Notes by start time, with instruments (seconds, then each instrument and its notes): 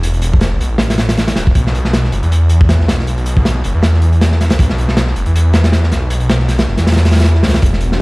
Already playing: detuned saw bass E1
0.03 closed hi-hat
0.14 closed hi-hat
0.22 closed hi-hat
0.33 kick
0.41 snare, closed hi-hat
0.60 detuned saw bass B1, closed hi-hat
0.71 detuned saw bass A1
0.78 snare, closed hi-hat
0.90 snare, closed hi-hat
0.98 snare, closed hi-hat
1.09 snare, closed hi-hat
1.17 snare, closed hi-hat
1.28 snare, closed hi-hat
1.36 detuned saw bass D1, snare, closed hi-hat
1.47 kick
1.55 detuned saw bass B1, kick, closed hi-hat
1.67 snare
1.75 closed hi-hat
1.85 snare
1.93 snare, closed hi-hat
2.04 snare
2.12 detuned saw bass F#1, closed hi-hat
2.23 detuned saw bass E2, closed hi-hat
2.32 closed hi-hat
2.49 closed hi-hat
2.61 kick
2.69 snare, closed hi-hat
2.80 snare
2.88 detuned saw bass B1, snare, closed hi-hat
2.99 snare
3.07 closed hi-hat
3.18 closed hi-hat
3.26 closed hi-hat
3.37 kick
3.45 snare, closed hi-hat
3.64 detuned saw bass F#1, closed hi-hat
3.74 detuned saw bass E2
3.83 snare, closed hi-hat
3.94 snare
4.02 closed hi-hat
4.12 closed hi-hat
4.21 snare, closed hi-hat
4.32 snare
4.41 snare, closed hi-hat
4.50 detuned saw bass B1, snare, closed hi-hat
4.59 detuned saw bass B1, kick, closed hi-hat
4.69 snare
4.78 closed hi-hat
4.88 snare
4.97 snare, closed hi-hat
5.08 snare
5.16 detuned saw bass F#1, closed hi-hat
5.26 detuned saw bass E2, closed hi-hat
5.36 closed hi-hat
5.53 snare, closed hi-hat
5.64 snare, closed hi-hat
5.72 snare, closed hi-hat
5.83 snare
5.92 detuned saw bass B1, snare, closed hi-hat
6.10 closed hi-hat
6.20 closed hi-hat
6.29 snare, closed hi-hat
6.40 snare
6.48 snare, closed hi-hat
6.58 snare, closed hi-hat
6.68 detuned saw bass F#1, snare
6.77 detuned saw bass E2, snare, closed hi-hat
6.87 snare, closed hi-hat
6.92 snare, closed hi-hat
6.97 snare, closed hi-hat
7.05 snare, closed hi-hat
7.11 snare, closed hi-hat
7.15 snare, closed hi-hat
7.20 snare, closed hi-hat
7.24 snare, closed hi-hat
7.35 snare
7.43 detuned saw bass C#2, snare, closed hi-hat
7.48 snare, closed hi-hat
7.54 snare, closed hi-hat
7.62 detuned saw bass E1, kick, closed hi-hat
7.73 snare
7.81 closed hi-hat
7.92 snare